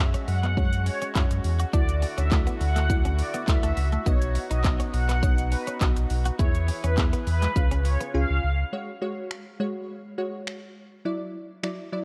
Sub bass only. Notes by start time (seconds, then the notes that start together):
Already playing: F#2
0.28 F#2
1.15 F#2
1.30 F#2
1.44 E2
1.73 D2
2.18 D2
2.61 D2
3.48 D2
3.64 D2
3.77 C#2
4.06 B1
4.51 B1
4.94 B1
5.81 B1
5.97 B1
6.10 B1
6.39 E2
6.84 E2
7.27 E2
7.56 C#2
8.14 C#2
8.30 C#2
8.43 C#2